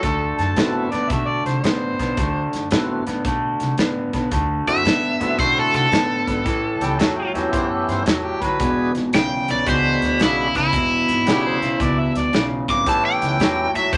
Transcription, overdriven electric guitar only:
Already playing: A4
4.69 E5
5.40 C5
5.59 A4
5.76 A4
9.15 G5
9.51 D5
9.69 C5
10.23 E4
10.57 E4
12.70 D6
12.89 A5
13.05 G5
13.76 E5
13.93 C5

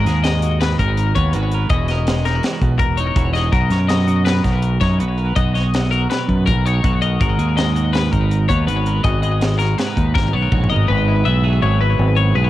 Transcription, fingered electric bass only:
0.05 D#2
0.79 G#1
1.16 D#2
1.34 G#1
1.70 E1
2.61 B1
2.79 E1
3.16 E1
3.52 B1
3.70 F#2
4.45 B1
4.81 F#2
5.00 B1
5.36 B1
6.28 F#2
6.48 B1
6.84 B1
7.21 G#1
7.39 D#2
8.13 G#1
8.50 D#2
8.67 G#1
9.04 G#1
9.97 D#2
10.16 G#1
10.34 B1
10.52 A#1
10.71 G#1
10.90 G#1
11.26 B1
11.62 G#1
11.99 G#1
12.35 B1

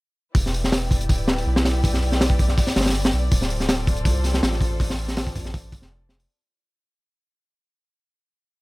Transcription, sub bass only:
0.35 E1
1.09 D1
1.47 B1
2.76 G1
3.13 B1
3.32 D1
4.05 C2
4.43 A1
5.72 G1
5.82 F1

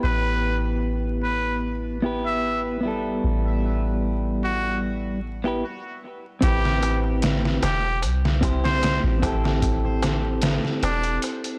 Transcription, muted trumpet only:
0.04 B4
1.23 B4
2.26 E5
4.44 F#4
6.44 G4
7.65 G4
8.65 C5
10.84 D4

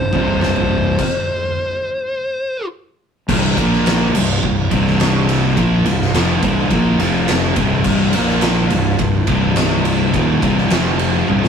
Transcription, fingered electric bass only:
Already playing: C1
0.13 C1
3.29 C1
3.58 A#1
4.15 C1
4.44 C1
4.71 C1
5.57 A#1
5.85 C1
6.14 F1
6.43 C1
6.71 A#1
7.00 F1
7.57 C1
7.85 C1
8.13 A#1
8.71 C1
8.99 C1
9.27 C1
10.14 D#1
10.43 C1
10.70 F1
11.28 C1

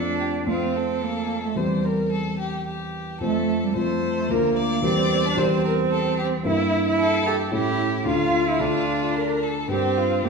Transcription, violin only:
Already playing: A4
0.20 G4
0.48 F4
0.76 A4
1.57 C5
1.85 A#4
2.12 A4
2.39 G4
2.67 G4
3.21 A4
3.76 C5
4.30 A#4
4.57 D5
5.38 C5
5.65 A#4
5.92 A4
6.19 G4
6.46 E4
7.00 A4
7.26 G4
7.53 E4
8.07 F4
9.15 A#4
9.43 A4
9.70 G4
9.97 F4
10.24 G4

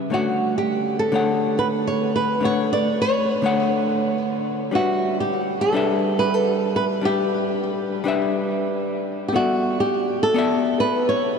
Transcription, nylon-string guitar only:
0.14 F#4
0.58 G4
0.99 A4
1.59 B4
1.87 C#5
2.16 B4
2.45 C#5
2.73 D5
3.02 C#5
4.75 F#4
5.20 G4
5.61 A4
6.19 B4
6.34 A4
6.76 B4
7.05 G4
9.28 G4
9.36 F#4
9.80 G4
10.23 A4
10.80 B4
11.09 C#5

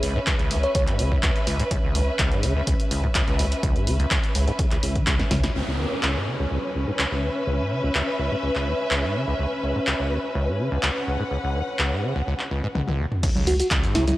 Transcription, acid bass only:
0.03 C#2
0.16 G#2
0.27 C#2
0.40 C#2
0.51 D#2
0.75 C#2
0.88 G#2
0.99 C#3
1.12 C#2
1.23 C#2
1.47 C#2
1.60 G#2
1.71 C#2
1.84 C#2
1.95 D#2
2.19 C#2
2.32 G#2
2.43 C#3
2.56 C#2
2.67 C#2
2.91 C#2
3.04 G#2
3.15 C#2
3.28 C#2
3.39 D#2
3.63 C#2
3.76 G#2
3.87 C#3
4.00 C#2
4.11 C#2
4.35 C#2
4.48 G#2
4.59 C#2
4.72 C#2
4.83 C#2
4.96 E3
5.07 C#2
5.20 B2
5.31 C#3
5.44 C#2
5.55 C#2
5.68 C#2
5.79 D#2
6.03 C#2
6.16 G#2
6.27 C#3
6.40 C#2
6.51 C#2
6.75 C#2
6.88 G#2
6.99 C#2
7.12 C#2
7.23 D#2
7.47 C#2
7.60 G#2
7.71 C#3
7.84 C#2
7.95 C#2
8.19 C#2
8.32 G#2
8.43 C#2
8.56 C#2
8.67 D#2
8.91 C#2
9.04 G#2
9.15 C#3
9.28 C#2
9.39 C#2
9.63 C#2
9.76 G#2
9.87 C#2
10.00 C#2
10.11 D#2
10.35 C#2
10.48 G#2
10.59 C#3
10.72 C#2
10.83 C#2
11.07 C#2
11.20 G#2
11.31 C#2
11.44 C#2
11.55 D#2
11.79 C#2
11.92 G#2
12.03 C#3
12.16 C#2
12.27 C#2
12.51 C#2
12.64 G#2
12.75 C#2
12.88 C#2
12.99 D#2
13.23 C#2
13.36 C#2
13.47 D#2
13.71 C#2
13.84 G#2
13.95 C#3
14.08 C#2

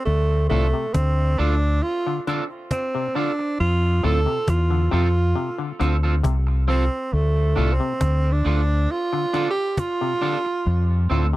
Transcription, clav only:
0.50 A2
0.74 C3
2.07 D3
2.27 D3
2.95 C3
3.16 D3
4.04 A2
4.26 C3
4.70 D3
4.91 C3
5.36 C3
5.58 D3
5.80 D3
6.24 C3
6.68 F3
7.56 A2
7.80 C3
9.13 D3
9.34 D3
10.01 C3
10.22 D3
11.11 A2
11.33 C3

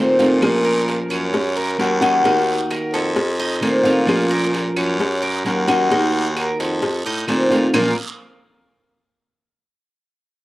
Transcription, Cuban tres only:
Already playing: C5
0.19 F4
0.64 A#4
1.10 C#5
1.56 A#4
2.02 D#5
2.25 D#4
2.71 A#4
2.94 A4
3.40 D#4
3.63 C5
3.86 F4
4.31 A#4
4.77 C#5
5.22 A#4
5.68 D#5
5.91 D#4
6.37 A#4
6.60 A4
7.06 D#4
7.29 C5
7.52 F4
7.74 A#3 F4 A#4

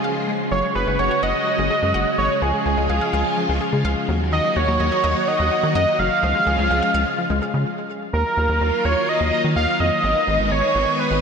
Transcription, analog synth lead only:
Already playing: G#4
0.51 C#5
0.75 B4
0.99 C#5
1.23 D#5
2.18 C#5
2.42 G#4
4.32 D#5
4.56 C#5
5.28 D#5
5.75 D#5
5.99 F5
8.13 A#4
8.85 C#5
9.09 D#5
9.33 D#5
9.56 F5
9.80 D#5
10.51 C#5
10.99 B4

